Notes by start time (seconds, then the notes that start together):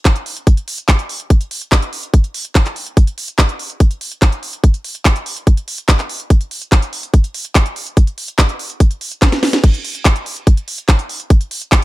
0.05 kick, clap, closed hi-hat
0.16 closed hi-hat
0.26 open hi-hat
0.36 closed hi-hat
0.47 kick, closed hi-hat
0.57 closed hi-hat
0.68 open hi-hat
0.78 closed hi-hat
0.89 kick, clap, closed hi-hat
0.99 closed hi-hat
1.09 open hi-hat
1.20 closed hi-hat
1.30 kick, closed hi-hat
1.41 closed hi-hat
1.51 open hi-hat
1.61 closed hi-hat
1.72 kick, clap, closed hi-hat
1.82 closed hi-hat
1.93 open hi-hat
2.03 closed hi-hat
2.14 kick, closed hi-hat
2.24 closed hi-hat
2.34 open hi-hat
2.45 closed hi-hat
2.55 kick, clap, closed hi-hat
2.66 clap, closed hi-hat
2.76 open hi-hat
2.86 closed hi-hat
2.97 kick, closed hi-hat
3.07 closed hi-hat
3.18 open hi-hat
3.28 closed hi-hat
3.39 kick, clap, closed hi-hat
3.49 closed hi-hat
3.59 open hi-hat
3.70 closed hi-hat
3.80 kick, closed hi-hat
3.91 closed hi-hat
4.01 open hi-hat
4.11 closed hi-hat
4.22 kick, clap, closed hi-hat
4.32 closed hi-hat
4.43 open hi-hat
4.53 closed hi-hat
4.64 kick, closed hi-hat
4.74 closed hi-hat
4.84 open hi-hat
4.95 closed hi-hat
5.05 kick, clap, closed hi-hat
5.16 closed hi-hat
5.26 open hi-hat
5.37 closed hi-hat
5.47 kick, closed hi-hat
5.57 closed hi-hat
5.68 open hi-hat
5.78 closed hi-hat
5.89 kick, clap, closed hi-hat
5.99 clap, closed hi-hat
6.09 open hi-hat
6.20 closed hi-hat
6.30 kick, closed hi-hat
6.41 closed hi-hat
6.51 open hi-hat
6.62 closed hi-hat
6.72 kick, clap, closed hi-hat
6.82 closed hi-hat
6.93 open hi-hat
7.03 closed hi-hat
7.14 kick, closed hi-hat
7.24 closed hi-hat
7.34 open hi-hat
7.45 closed hi-hat
7.55 kick, clap, closed hi-hat
7.66 closed hi-hat
7.76 open hi-hat
7.87 closed hi-hat
7.97 kick, closed hi-hat
8.07 closed hi-hat
8.18 open hi-hat
8.28 closed hi-hat
8.39 kick, clap, closed hi-hat
8.49 closed hi-hat
8.59 open hi-hat
8.70 closed hi-hat
8.80 kick, closed hi-hat
8.91 closed hi-hat
9.01 open hi-hat
9.12 closed hi-hat
9.22 kick, snare, clap, closed hi-hat
9.32 snare, closed hi-hat
9.43 snare, open hi-hat
9.53 snare, closed hi-hat
9.64 kick, closed hi-hat, crash
9.74 closed hi-hat
9.84 open hi-hat
9.95 closed hi-hat
10.05 kick, clap, closed hi-hat
10.16 closed hi-hat
10.26 open hi-hat
10.37 closed hi-hat
10.47 kick, closed hi-hat
10.57 closed hi-hat
10.68 open hi-hat
10.78 closed hi-hat
10.89 kick, clap, closed hi-hat
10.99 closed hi-hat
11.09 open hi-hat
11.20 closed hi-hat
11.30 kick, closed hi-hat
11.41 closed hi-hat
11.51 open hi-hat
11.62 closed hi-hat
11.72 kick, clap, closed hi-hat